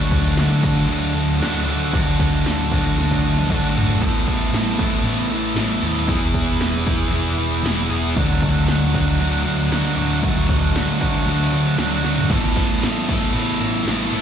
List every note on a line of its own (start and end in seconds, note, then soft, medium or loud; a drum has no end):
0.00 0.34 D2 loud
0.00 0.87 D3 loud
0.00 0.88 F#3 loud
0.00 0.64 A3 medium
0.00 0.63 D4 loud
0.00 0.39 F#4 medium
0.00 0.61 A4 loud
0.11 kick medium
0.11 crash medium
0.36 0.85 D2 medium
0.36 1.93 D3 medium
0.36 1.39 A3 loud
0.36 0.65 D4 medium
0.36 0.63 F#4 medium
0.36 snare loud
0.36 crash medium
0.41 0.62 A4 loud
0.61 0.90 A3 medium
0.61 0.89 D4 medium
0.61 1.40 F#4 medium
0.61 0.91 A4 medium
0.61 kick medium
0.61 crash medium
0.77 snare soft
0.88 1.14 D2 loud
0.88 1.41 D3 loud
0.88 1.39 F#3 loud
0.88 1.17 A3 medium
0.88 1.14 D4 loud
0.88 1.13 A4 loud
0.88 crash medium
1.13 1.40 D2 medium
1.13 1.41 A3 medium
1.13 1.41 D4 medium
1.13 1.43 A4 medium
1.13 crash medium
1.40 1.66 D2 medium
1.40 1.92 F#3 medium
1.40 1.69 A3 medium
1.40 1.67 D4 medium
1.40 1.68 F#4 medium
1.40 1.66 A4 loud
1.40 snare loud
1.40 crash medium
1.66 1.92 D2 medium
1.66 1.94 A3 medium
1.66 1.94 D4 medium
1.66 1.94 F#4 medium
1.66 1.95 A4 medium
1.66 crash medium
1.93 2.42 D2 loud
1.93 2.97 D3 loud
1.93 2.97 F#3 medium
1.93 2.74 A3 loud
1.93 2.72 D4 loud
1.93 2.48 F#4 loud
1.93 2.71 A4 loud
1.93 kick loud
1.93 crash medium
2.20 kick medium
2.20 crash medium
2.45 2.94 D2 medium
2.45 2.98 D3 medium
2.45 3.50 A3 loud
2.45 2.75 D4 loud
2.45 2.73 F#4 loud
2.45 2.72 A4 loud
2.45 snare loud
2.45 crash medium
2.71 2.98 A3 medium
2.71 2.99 D4 medium
2.71 3.51 F#4 medium
2.71 3.00 A4 medium
2.71 kick medium
2.71 crash medium
2.86 snare soft
2.97 3.21 D2 medium
2.97 3.50 D3 medium
2.97 3.48 F#3 loud
2.97 3.25 A3 loud
2.97 3.23 D4 loud
2.97 3.22 A4 loud
2.97 high tom medium
3.11 kick medium
3.23 3.48 D2 medium
3.23 3.50 A3 medium
3.23 3.50 D4 medium
3.23 3.51 A4 medium
3.37 mid tom medium
3.49 3.74 D2 medium
3.49 4.00 F#3 medium
3.49 3.77 A3 medium
3.49 3.76 D4 medium
3.49 3.75 F#4 medium
3.49 3.74 A4 medium
3.49 kick medium
3.75 3.99 G#1 medium
3.75 4.00 A3 medium
3.75 4.01 D4 medium
3.75 4.00 F#4 medium
3.75 4.00 A4 medium
3.75 floor tom medium
3.89 floor tom medium
4.01 4.49 A1 medium
4.01 5.02 A3 medium
4.01 4.81 B3 medium
4.01 4.80 E4 loud
4.01 kick loud
4.01 crash medium
4.05 4.77 A4 medium
4.27 kick medium
4.27 crash medium
4.53 5.01 A1 medium
4.53 5.05 A3 loud
4.53 4.81 B3 loud
4.53 4.80 E4 medium
4.53 4.77 A4 loud
4.53 snare loud
4.53 crash medium
4.78 5.04 B3 medium
4.78 5.05 E4 medium
4.78 5.06 A4 medium
4.78 kick loud
4.78 crash medium
5.04 5.28 A1 loud
5.04 5.55 A3 loud
5.04 5.32 B3 loud
5.04 5.31 E4 loud
5.04 5.29 A4 loud
5.04 crash medium
5.29 5.54 A1 medium
5.29 5.56 B3 medium
5.29 5.58 E4 medium
5.29 5.58 A4 medium
5.29 crash medium
5.55 5.80 A1 medium
5.55 6.06 A3 medium
5.55 5.84 B3 medium
5.55 5.83 E4 medium
5.55 snare loud
5.55 crash medium
5.60 5.81 A4 medium
5.82 6.06 D#2 medium
5.82 6.06 B3 medium
5.82 6.08 E4 medium
5.82 6.07 A4 medium
5.82 crash medium
6.06 6.56 E1 loud
6.06 7.10 E3 loud
6.06 6.87 B3 medium
6.06 6.85 E4 loud
6.06 6.83 G#4 loud
6.06 kick loud
6.06 crash medium
6.34 kick medium
6.34 crash medium
6.59 7.08 E1 medium
6.59 7.64 E3 medium
6.59 6.88 B3 loud
6.59 snare loud
6.59 crash medium
6.63 6.88 E4 medium
6.63 6.85 G#4 loud
6.84 7.10 B3 medium
6.84 7.13 E4 medium
6.84 7.13 G#4 medium
6.84 kick medium
6.84 crash medium
7.10 7.36 E1 loud
7.10 7.62 E3 medium
7.10 7.40 B3 medium
7.10 7.39 E4 loud
7.10 crash medium
7.14 7.36 G#4 loud
7.37 7.62 E1 medium
7.37 7.63 B3 medium
7.37 7.65 E4 medium
7.37 7.65 G#4 medium
7.37 crash medium
7.63 7.88 E1 medium
7.63 8.17 E3 medium
7.63 7.92 B3 medium
7.63 7.91 E4 loud
7.63 7.89 G#4 medium
7.63 snare loud
7.63 crash medium
7.89 8.14 E1 medium
7.89 8.18 E4 medium
7.89 8.14 G#4 medium
7.89 crash medium
7.93 8.16 B3 medium
8.16 8.64 D2 medium
8.16 9.19 D3 medium
8.16 9.20 F#3 loud
8.16 8.97 A3 loud
8.16 8.95 D4 medium
8.16 8.94 F#4 loud
8.16 kick loud
8.16 crash medium
8.30 snare soft
8.42 kick loud
8.42 crash medium
8.67 9.16 D2 medium
8.67 10.20 D3 loud
8.67 9.69 F#3 medium
8.67 8.95 A3 loud
8.67 8.94 D4 medium
8.67 snare loud
8.67 crash medium
8.71 8.92 F#4 loud
8.94 9.21 A3 medium
8.94 9.21 D4 medium
8.94 9.21 F#4 medium
8.94 kick medium
8.94 crash medium
9.19 9.43 D2 loud
9.19 9.72 D3 loud
9.19 9.70 F#3 loud
9.19 9.47 A3 loud
9.19 9.46 D4 loud
9.19 9.43 F#4 loud
9.19 crash medium
9.44 9.69 D2 medium
9.44 9.71 A3 medium
9.44 9.72 D4 medium
9.44 9.73 F#4 medium
9.44 crash medium
9.71 9.95 D2 medium
9.71 10.23 F#3 medium
9.71 10.01 A3 medium
9.71 9.98 D4 medium
9.71 9.96 F#4 medium
9.71 snare loud
9.71 crash medium
9.96 10.21 D2 loud
9.96 10.25 D4 medium
9.96 10.26 F#4 medium
9.96 crash medium
10.01 10.24 A3 medium
10.23 10.71 D2 loud
10.23 11.24 D3 medium
10.23 11.25 F#3 medium
10.23 11.02 A3 loud
10.23 11.01 D4 medium
10.23 kick loud
10.23 crash medium
10.27 10.99 F#4 loud
10.38 snare soft
10.49 kick medium
10.49 crash medium
10.73 11.23 D2 medium
10.73 11.26 D3 medium
10.73 11.27 F#3 loud
10.73 11.02 A3 loud
10.73 11.00 D4 loud
10.73 10.99 F#4 loud
10.73 snare loud
10.73 crash medium
11.00 11.25 A3 medium
11.00 11.26 D4 medium
11.00 11.27 F#4 medium
11.00 kick medium
11.00 crash medium
11.15 snare soft
11.25 11.51 D2 loud
11.25 11.78 D3 loud
11.25 11.76 F#3 loud
11.25 11.53 A3 loud
11.25 11.52 D4 loud
11.25 11.50 F#4 loud
11.25 crash medium
11.51 11.77 D2 medium
11.51 11.77 A3 medium
11.51 11.78 D4 medium
11.51 11.79 F#4 medium
11.51 crash medium
11.77 12.03 D2 medium
11.77 12.29 F#3 medium
11.77 12.07 A3 medium
11.77 12.05 D4 medium
11.77 12.03 F#4 medium
11.77 snare loud
11.77 crash medium
12.04 12.29 D2 medium
12.04 12.28 A3 medium
12.04 12.30 D4 medium
12.04 12.29 F#4 medium
12.04 snare medium
12.17 floor tom medium
12.29 12.79 A1 loud
12.29 13.07 A2 medium
12.29 13.10 E3 loud
12.29 13.32 A3 loud
12.29 13.11 B3 loud
12.29 13.10 E4 loud
12.29 13.07 A4 loud
12.29 kick loud
12.29 crash loud
12.29 crash medium
12.33 13.07 A3 medium
12.56 kick medium
12.56 crash medium
12.81 13.31 A1 loud
12.81 13.34 A3 loud
12.81 13.11 B3 loud
12.81 13.10 E4 loud
12.81 13.07 A4 loud
12.81 snare loud
12.81 crash loud
13.08 13.85 A2 medium
13.08 13.88 E3 medium
13.08 13.85 A3 medium
13.08 13.34 B3 medium
13.08 13.35 E4 medium
13.08 13.36 A4 medium
13.08 kick loud
13.08 crash medium
13.33 13.59 A1 loud
13.33 13.84 A3 loud
13.33 13.62 B3 loud
13.33 13.61 E4 loud
13.33 13.58 A4 loud
13.33 crash medium
13.59 13.85 A1 medium
13.59 13.85 B3 medium
13.59 13.88 E4 medium
13.59 13.88 A4 medium
13.59 crash medium
13.85 14.11 A1 medium
13.85 14.22 A2 medium
13.85 14.22 E3 medium
13.85 14.22 A3 medium
13.85 14.14 B3 medium
13.85 14.13 E4 medium
13.85 14.10 A4 medium
13.85 snare loud
13.85 crash medium
13.90 14.22 A3 medium
14.11 14.22 A1 medium
14.11 14.22 E4 medium
14.11 14.22 A4 medium
14.11 crash medium
14.15 14.22 B3 medium